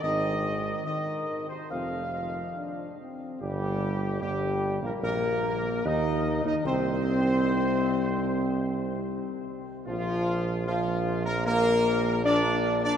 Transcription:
0.03 tuba G#1, trombone section D#3, french horn section G#3 C4, trumpet section D#5
0.85 trombone section D#3, trumpet section D#5
1.49 trombone section C3, trumpet section C5
1.70 tuba F1, trombone section F3, french horn section A3 C4, trumpet section F5
2.56 french horn section D4
3.00 french horn section C4
3.41 tuba G1, trombone section G3, french horn section G3, trumpet section G4
4.22 tuba G1, trombone section G3, french horn section G3, trumpet section G4
4.82 tuba A#1, trombone section A#3, french horn section A#3, trumpet section A#4
5.02 tuba A#1, french horn section A#3, trombone section A#3, trumpet section A#4
5.85 tuba D#2, trombone section D#4, french horn section D#4, trumpet section D#5
6.45 tuba D#2, trombone section D#4, french horn section D#4, trumpet section D#5
6.65 tuba C2, trombone section C4, french horn section C4, trumpet section C5
9.86 tuba A#1, trombone section F3, french horn section F3, trumpet section F4
10.67 french horn section F3, trombone section F3, trumpet section F4
11.26 french horn section A#3, trombone section A#3, trumpet section A#4
11.45 french horn section A#3, trombone section A#3, trumpet section A#4
12.24 french horn section D4, trombone section D4, trumpet section D5
12.84 french horn section D4, trombone section D4, trumpet section D5

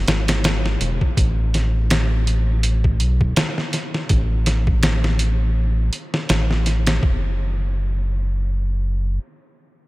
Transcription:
0.08 analog synth bass G#1, snare, closed hi-hat
0.28 snare, closed hi-hat
0.44 snare, closed hi-hat
0.66 snare
0.81 analog synth bass E1, closed hi-hat
1.01 kick
1.17 analog synth bass A1, kick, closed hi-hat
1.54 snare, closed hi-hat
1.90 snare, closed hi-hat
2.27 closed hi-hat
2.63 closed hi-hat
2.84 kick
3.00 analog synth bass B1, closed hi-hat
3.21 kick
3.36 snare, closed hi-hat
3.58 snare
3.73 snare, closed hi-hat
3.94 snare
4.09 analog synth bass A1, kick, closed hi-hat
4.46 snare, closed hi-hat
4.67 kick
4.83 snare, closed hi-hat
5.04 snare
5.19 closed hi-hat
5.93 closed hi-hat
6.14 snare
6.29 analog synth bass A1, snare, closed hi-hat
6.51 snare
6.66 snare, closed hi-hat
6.87 snare, closed hi-hat
7.03 analog synth bass F#1, kick

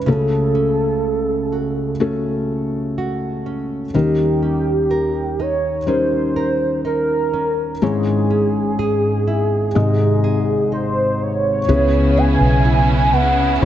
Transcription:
Already playing: nylon-string guitar C#4 D#4 G#4, soft synth lead B4
0.06 felt piano C#2 C#3 A3 C#4 F#4 A4, nylon-string guitar C#3, soft synth lead A4
0.55 nylon-string guitar C#4
1.52 nylon-string guitar F#4
2.00 felt piano A3 C#4 F#4 A4, nylon-string guitar C#4
2.98 nylon-string guitar F#4
3.46 nylon-string guitar C#4
3.94 felt piano D#2 D#3 G3 C#4 D#4 A#4, nylon-string guitar D#3, soft synth lead G4
4.43 nylon-string guitar C#4
4.91 nylon-string guitar A#4
5.40 nylon-string guitar D#4, soft synth lead C#5
5.86 felt piano G3 C#4 D#4 A#4, nylon-string guitar C#4, soft synth lead C5
6.36 nylon-string guitar A#4
6.85 nylon-string guitar D#4, soft synth lead A#4
7.33 nylon-string guitar C#4
7.82 felt piano G#1 G#2 G#3 C#4 E4 C#5, nylon-string guitar G#2, soft synth lead G#4
8.30 nylon-string guitar C#4
8.79 nylon-string guitar G#4
9.27 nylon-string guitar E4
9.75 felt piano G#1 G#2 C3 G#3 D#4 D#5, nylon-string guitar G#2
10.24 nylon-string guitar G#4
10.72 nylon-string guitar D#4, soft synth lead C5
11.22 soft synth lead C#5
11.67 fingered electric bass C#2, string section C#3 B3 C#4 E4 G#4, nylon-string guitar C#3, felt piano C#3 B3 C#4 E4 G#4 C#5
12.18 nylon-string guitar B3, soft synth lead G#5
12.41 fingered electric bass B1
12.65 nylon-string guitar E4
13.13 fingered electric bass C#2, nylon-string guitar B3, soft synth lead F#5
13.62 felt piano B3 C#4 E4

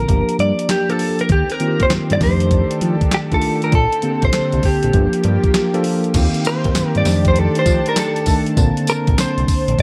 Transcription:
Already playing: tine electric piano D3 A#3 C4 A4, clean electric guitar A#4
0.09 analog synth bass G1, tine electric piano F3 A#3 D4 G4, kick, closed hi-hat
0.29 closed hi-hat
0.39 analog synth bass G2, clean electric guitar D5, closed hi-hat
0.59 closed hi-hat
0.69 clean electric guitar G4, snare, clap, closed hi-hat
0.89 tine electric piano F3 A#3 D4 G4, clean electric guitar A4, closed hi-hat
0.99 open hi-hat
1.19 clean electric guitar A#4, closed hi-hat
1.29 analog synth bass D#2, analog synth pad D#3 C4 G4, clean electric guitar G4, kick, closed hi-hat
1.50 clean electric guitar A#4, closed hi-hat
1.60 tine electric piano D#3 A#3 C4 F4, closed hi-hat
1.68 tine electric piano G4
1.80 analog synth bass D#2, clean electric guitar C5, kick, closed hi-hat
1.90 analog synth bass G2, snare, clap, closed hi-hat
2.10 analog synth bass G2, clean electric guitar D5, closed hi-hat
2.21 analog synth bass F2, tine electric piano D#3 A3 D4 G4, analog synth pad D4 G4 A4, clean electric guitar C5, kick, snare, open hi-hat
2.40 closed hi-hat
2.51 kick, closed hi-hat
2.71 closed hi-hat
2.81 analog synth bass F3, closed hi-hat
3.01 kick, closed hi-hat
3.11 clean electric guitar G4, snare, clap, closed hi-hat
3.31 tine electric piano D#3 A3 D4 F4, clean electric guitar A4, kick, closed hi-hat
3.42 open hi-hat
3.62 clean electric guitar A#4, closed hi-hat
3.72 analog synth bass A#1, analog synth pad D3 C4, clean electric guitar A4, kick, closed hi-hat
3.93 closed hi-hat
4.02 tine electric piano D3 A#3 C4 G4, closed hi-hat
4.10 tine electric piano A4
4.22 analog synth bass A#1, clean electric guitar C5, kick, closed hi-hat
4.33 analog synth bass C2, snare, clap, closed hi-hat
4.52 analog synth bass C2, closed hi-hat
4.63 clean electric guitar G4, kick, open hi-hat
4.83 analog synth bass A#1, closed hi-hat
4.93 analog synth bass G1, tine electric piano F3 A#3 D4 G4, analog synth pad F3 A#3 G4, kick, closed hi-hat
5.13 closed hi-hat
5.24 analog synth bass G2, closed hi-hat
5.44 kick, closed hi-hat
5.54 snare, clap, closed hi-hat
5.74 tine electric piano F3 A#3 D4 A4, closed hi-hat
5.84 open hi-hat
6.04 closed hi-hat
6.14 analog synth bass D#2, tine electric piano D#3 A#3 C4 F4, analog synth pad D#3 C4 G4, kick, closed hi-hat, crash, tambourine
6.22 tine electric piano G4
6.34 closed hi-hat
6.45 clean electric guitar C5, closed hi-hat, tambourine
6.64 analog synth bass D#2, kick, closed hi-hat
6.75 analog synth bass G2, snare, clap, closed hi-hat, tambourine
6.95 analog synth bass G2, clean electric guitar D5, closed hi-hat
7.05 analog synth bass F2, tine electric piano D#3 A3 D4 G4, analog synth pad D#3 D4 A5, snare, open hi-hat, tambourine
7.25 clean electric guitar C5, kick, closed hi-hat
7.36 clean electric guitar A4, closed hi-hat
7.55 clean electric guitar C5, closed hi-hat
7.66 analog synth bass F3, kick, closed hi-hat, tambourine
7.86 clean electric guitar A#4, closed hi-hat
7.96 clean electric guitar A4, snare, clap, closed hi-hat, tambourine
8.16 closed hi-hat
8.26 tine electric piano D#3 A3 D4 A4, kick, open hi-hat, tambourine
8.46 closed hi-hat
8.57 analog synth bass A#1, tine electric piano D3 A#3 C4 A5, analog synth pad D3 C4, kick, closed hi-hat, tambourine
8.77 closed hi-hat
8.87 clean electric guitar A#4, closed hi-hat, tambourine
9.07 analog synth bass A#1, kick, closed hi-hat
9.18 analog synth bass C2, clean electric guitar C5, snare, clap, closed hi-hat, tambourine
9.38 analog synth bass C2, closed hi-hat
9.48 kick, open hi-hat, tambourine
9.68 analog synth bass A#1, closed hi-hat
9.78 analog synth bass G1, analog synth pad F3 A#3 G4, tine electric piano F3, kick, closed hi-hat

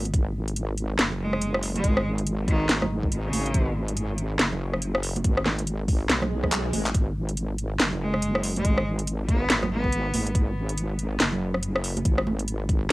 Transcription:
Already playing: wobble bass G#1
0.05 closed hi-hat
0.14 wobble bass G#1, kick, closed hi-hat
0.48 closed hi-hat
0.56 closed hi-hat
0.78 closed hi-hat
0.99 wobble bass F#1, snare, closed hi-hat
1.11 low conga
1.20 cello G#3
1.33 cross-stick
1.42 closed hi-hat
1.54 cross-stick
1.63 open hi-hat
1.75 cello G#3, closed hi-hat, high conga
1.84 wobble bass G#1, kick, closed hi-hat
1.97 cross-stick
2.18 closed hi-hat
2.27 closed hi-hat
2.48 cello D#3, kick, closed hi-hat
2.69 wobble bass G#1, snare, closed hi-hat
2.82 cross-stick, high conga, low conga
3.03 kick
3.12 closed hi-hat
3.25 cello C#3
3.33 wobble bass G#1, open hi-hat, high conga
3.46 closed hi-hat
3.54 wobble bass G#1, kick, closed hi-hat
3.88 closed hi-hat
3.97 closed hi-hat
4.18 closed hi-hat
4.39 wobble bass F#1, snare, closed hi-hat
4.53 low conga
4.73 cross-stick
4.82 closed hi-hat
4.95 cross-stick
5.03 open hi-hat
5.16 closed hi-hat, high conga
5.24 wobble bass G#1, kick, closed hi-hat
5.37 cross-stick
5.46 snare, high conga
5.58 closed hi-hat
5.67 closed hi-hat
5.88 kick, open hi-hat
6.09 wobble bass B1, snare, closed hi-hat, swell
6.22 cross-stick, high conga, low conga
6.44 kick, cross-stick
6.52 clap, closed hi-hat
6.73 wobble bass G#1, open hi-hat, high conga
6.86 clap, closed hi-hat
6.95 wobble bass G#1, kick, closed hi-hat
7.29 closed hi-hat
7.37 closed hi-hat
7.58 closed hi-hat
7.80 wobble bass F#1, snare, closed hi-hat
7.93 low conga
8.01 cello G#3
8.14 cross-stick
8.22 closed hi-hat
8.35 cross-stick
8.43 open hi-hat
8.56 cello G#3, closed hi-hat, high conga
8.65 wobble bass G#1, kick, closed hi-hat
8.78 cross-stick
8.99 closed hi-hat
9.07 closed hi-hat
9.29 cello B3, kick, closed hi-hat
9.50 wobble bass G#1, snare, closed hi-hat
9.62 cross-stick, high conga, low conga
9.71 cello B3
9.84 kick
9.93 closed hi-hat
10.14 wobble bass G#1, open hi-hat, high conga
10.27 closed hi-hat
10.35 wobble bass G#1, kick, closed hi-hat
10.69 closed hi-hat
10.78 closed hi-hat
10.99 closed hi-hat
11.20 wobble bass F#1, snare, closed hi-hat
11.33 low conga
11.54 cross-stick
11.63 closed hi-hat
11.76 cross-stick
11.84 open hi-hat
11.97 closed hi-hat, high conga
12.05 wobble bass G#1, kick, closed hi-hat
12.18 cross-stick
12.27 high conga
12.39 closed hi-hat
12.48 closed hi-hat
12.69 kick, closed hi-hat

